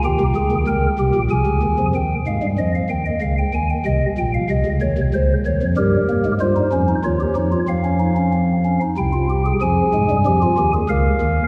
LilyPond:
<<
  \new Staff \with { instrumentName = "Pipe organ" } { \time 3/4 \key ees \dorian \tempo 4 = 94 << { g''4 g''4 aes''4 | g''8 f''8 ees''16 f''16 g''16 ees''16 f''16 g''16 aes''16 g''16 | ees''8 g''16 f''16 ees''8 des''8 c''8 des''8 | \key f \minor bes'4 c''4 des''4 |
f''2 g''4 | aes''2 f''4 | } \\ { g'8 aes'8 bes'8 g'8 aes'4 | r2. | r2. | g'4 f'16 ees'16 des'16 ees'16 f'16 g'16 ees'16 f'16 |
c'16 des'16 ees'16 des'16 c'8 des'16 ees'16 e'16 f'16 g'16 aes'16 | aes'4 g'16 f'16 g'16 aes'16 bes'4 | } >> }
  \new Staff \with { instrumentName = "Pipe organ" } { \clef bass \time 3/4 \key ees \dorian <ees, ees>16 <c, c>16 <des, des>16 <ees, ees>16 <des, des>8 <c, c>16 <bes,, bes,>16 <c, c>16 <des, des>16 <ees, ees>16 <f, f>16 | <ees, ees>8 <aes, aes>16 <g, g>16 <f, f>8 <ees, ees>8 <des, des>8 <ees, ees>8 | <c, c>8 <bes,, bes,>8 <c, c>16 <des, des>16 <ees, ees>16 <c, c>16 <des, des>8 <ees, ees>16 <f, f>16 | \key f \minor <g, g>8 bes16 <aes, aes>16 <g, g>8 <f, f>8 <ees, ees>8 <f, f>8 |
<f, f>2 <c, c>4 | <f, f>8 <aes, aes>16 <g, g>16 <f, f>8 <ees, ees>8 <des, des>8 <ees, ees>8 | }
>>